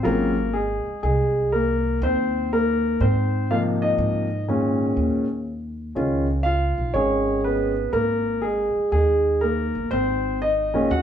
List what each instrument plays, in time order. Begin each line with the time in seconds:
0.03 upright bass G#1, grand piano C#3 F#3 C4 F4 A#4
0.07 grand piano A#3
0.54 grand piano G#3 G#4
0.86 muted upright bass stroke
1.03 upright bass C2, grand piano G#3 G#4
1.52 grand piano A#3 A#4
2.02 upright bass D#2, grand piano C4 C5
2.53 grand piano A#3 A#4
3.00 upright bass G#2, grand piano C4 C5
3.50 grand piano C3 F3 A#3 D#4 F4 F5
3.82 grand piano D#4 D#5
3.98 upright bass G#2
4.48 grand piano A#2 D#3 G#3 C#4
4.97 upright bass D#2
5.95 upright bass C#2, grand piano D#3 G#3 C#4 F4
6.43 grand piano F4 F5
6.78 upright bass B1
6.94 upright bass G#1, grand piano D#3 G#3 C#4 G#4 C#5
7.44 grand piano B3 B4
7.93 upright bass G#1, grand piano A#3 A#4
8.42 grand piano G#3 G#4
8.75 muted upright bass stroke
8.92 upright bass D#2, grand piano G#3 G#4
9.41 grand piano A#3 A#4
9.75 upright bass G1
9.91 upright bass G#1, grand piano C4 C5
10.42 grand piano D#4 D#5
10.74 grand piano A#2 D#3 G#3 C#4
10.90 upright bass D#2, grand piano F#4 F#5